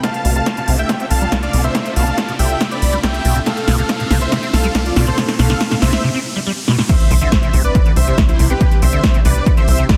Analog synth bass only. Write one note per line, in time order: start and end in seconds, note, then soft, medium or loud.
0.25 0.41 C2 loud
0.68 0.84 C2 medium
1.11 1.27 C2 medium
1.32 1.49 C2 loud
1.54 1.70 C2 loud
1.96 2.13 C2 loud
2.39 2.56 C2 medium
2.82 2.99 C2 loud
3.03 3.20 C2 medium
3.25 3.41 C2 loud
3.68 3.84 C2 medium
4.11 4.27 C2 medium
4.53 4.70 C2 loud
4.75 4.91 C2 loud
4.96 5.13 C2 loud
5.39 5.56 C2 loud
5.82 5.99 C2 medium
7.11 7.27 C2 loud
7.54 7.70 C2 medium
7.96 8.13 C2 loud
8.18 8.34 C2 loud
8.39 8.56 C2 loud
8.82 8.99 C2 loud
9.25 9.41 C2 medium
9.68 9.84 C2 loud
9.89 9.97 C2 medium